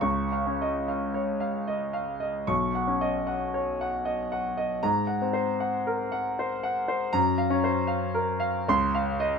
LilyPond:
<<
  \new Staff \with { instrumentName = "Grand piano" } { \time 3/4 \key des \major \tempo 4 = 77 << { des'''8 r2 r8 | des'''8 r2 r8 | bes''8 r2 r8 | bes''8 r4. c'''8 r8 | } \\ { \tuplet 3/2 { r8 f''8 ees''8 f''8 des''8 f''8 ees''8 f''8 ees''8 } | \tuplet 3/2 { r8 ges''8 ees''8 ges''8 des''8 ges''8 ees''8 ges''8 ees''8 } | \tuplet 3/2 { r8 ges''8 c''8 ges''8 bes'8 ges''8 c''8 ges''8 c''8 } | \tuplet 3/2 { r8 f''8 c''8 f''8 bes'8 f''8 r8 f''8 ees''8 } | } >> }
  \new Staff \with { instrumentName = "Grand piano" } { \clef bass \time 3/4 \key des \major des,8 des'4 r4. | ces,8 des'4 r4. | aes,8 c'4 r4. | ges,8 des'4 r8 des,4 | }
>>